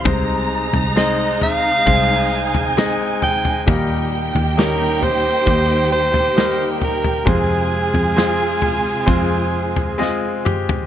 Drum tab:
SD |----o-------o---|----o-------o---|----o-------o---|
T2 |----------------|----------------|--------------o-|
FT |o--o--o-o--o--oo|o--o--o-o--o--oo|o--o--o-o--o---o|
BD |o-------o-------|o-------o-------|o-------o-------|